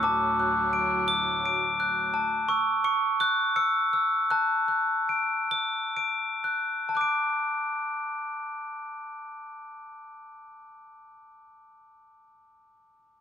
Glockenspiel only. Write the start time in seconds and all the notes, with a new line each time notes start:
0.03 A5 D6
0.40 F#6
0.73 D7
1.08 A7
1.46 D7
1.80 F#6
2.14 A5
2.49 C#6 E6
2.84 C#6 C#7
3.20 F#6 A7
3.56 E6 C#7
3.93 E6
4.30 A5 F#6
4.68 F#6
5.09 D7
5.51 A7
5.97 D7
6.44 F#6
6.89 A5
6.95 D6 F#6
7.01 D7